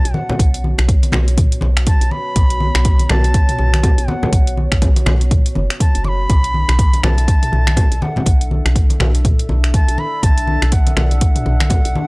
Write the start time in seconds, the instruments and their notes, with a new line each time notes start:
Already playing: analog synth pad B3 F#4 C#5, bansuri A5
0.05 fm bass B1, closed hi-hat
0.14 bansuri F#5, muted conga, high conga
0.29 high conga, low conga
0.39 fm bass B1, kick, closed hi-hat, muted conga
0.54 closed hi-hat
0.64 high conga
0.78 fm bass B1, finger snap, closed hi-hat, muted conga
0.89 kick, closed hi-hat
1.03 closed hi-hat, muted conga
1.12 fm bass B1, finger snap, high conga, low conga
1.28 closed hi-hat, muted conga
1.37 kick, closed hi-hat, mid tom, high conga
1.52 closed hi-hat
1.61 fm bass B1, muted conga, high conga
1.77 finger snap, closed hi-hat
1.87 bansuri A5, kick, closed hi-hat, muted conga
2.01 fm bass B1, closed hi-hat
2.11 bansuri B5, muted conga
2.36 fm bass B1, kick, closed hi-hat, muted conga
2.50 closed hi-hat
2.60 high conga
2.75 fm bass B1, finger snap, closed hi-hat, muted conga
2.85 kick, closed hi-hat
2.99 closed hi-hat, muted conga
3.09 fm bass B1, bansuri A5, finger snap, high conga, low conga
3.24 closed hi-hat, muted conga
3.34 kick, closed hi-hat
3.49 closed hi-hat, mid tom
3.58 fm bass B1, mid tom, muted conga
3.74 finger snap, closed hi-hat, high conga
3.83 kick, closed hi-hat, muted conga, low conga
3.98 fm bass B1, closed hi-hat
4.08 bansuri F#5, muted conga, high conga
4.23 high conga, low conga
4.32 fm bass B1, kick, closed hi-hat, muted conga
4.47 closed hi-hat
4.57 high conga
4.72 fm bass B1, finger snap, kick, closed hi-hat, muted conga
4.82 kick, closed hi-hat, low conga
4.96 closed hi-hat, muted conga
5.06 fm bass B1, finger snap, high conga, low conga
5.21 closed hi-hat, muted conga
5.31 kick, closed hi-hat, mid tom, high conga
5.46 closed hi-hat
5.55 fm bass F#1, muted conga, high conga
5.70 finger snap, closed hi-hat
5.80 bansuri A5, kick, closed hi-hat, muted conga
5.95 fm bass F#1, closed hi-hat
6.04 bansuri B5 D6, muted conga
6.29 fm bass B1, analog synth pad D4 A4 E5, kick, closed hi-hat, muted conga
6.44 closed hi-hat
6.54 high conga
6.69 fm bass B1, finger snap, closed hi-hat, muted conga
6.79 kick, closed hi-hat
6.93 closed hi-hat, muted conga
7.03 fm bass B1, bansuri A5, finger snap, high conga, low conga
7.18 closed hi-hat, muted conga
7.28 kick, closed hi-hat
7.43 closed hi-hat, mid tom
7.52 fm bass B1, mid tom, muted conga
7.67 finger snap, closed hi-hat, high conga
7.77 kick, closed hi-hat, muted conga, low conga
7.92 fm bass B1, closed hi-hat
8.02 bansuri F#5, muted conga, high conga
8.16 high conga, low conga
8.26 fm bass B1, kick, closed hi-hat, muted conga
8.41 closed hi-hat
8.51 high conga
8.65 fm bass B1, finger snap, closed hi-hat, muted conga
8.76 kick, closed hi-hat
8.90 closed hi-hat, muted conga
9.00 fm bass B1, finger snap, high conga, low conga
9.15 closed hi-hat, muted conga
9.25 kick, closed hi-hat, mid tom, high conga
9.39 closed hi-hat
9.49 fm bass B1, muted conga, high conga
9.64 finger snap, closed hi-hat
9.74 bansuri A5, kick, closed hi-hat, muted conga
9.88 fm bass B1, closed hi-hat
9.98 bansuri B5, muted conga
10.23 fm bass B1, bansuri A5, kick, closed hi-hat, muted conga
10.38 closed hi-hat
10.47 high conga
10.62 fm bass B1, finger snap, closed hi-hat, muted conga
10.72 bansuri F#5, kick, closed hi-hat
10.87 closed hi-hat, muted conga
10.96 fm bass B1, bansuri F#5, finger snap, high conga, low conga
11.11 closed hi-hat, muted conga
11.21 kick, closed hi-hat
11.36 closed hi-hat, mid tom
11.46 fm bass B1, mid tom, muted conga
11.60 finger snap, closed hi-hat, high conga
11.70 kick, closed hi-hat, muted conga, low conga
11.85 fm bass B1, closed hi-hat
11.95 muted conga, high conga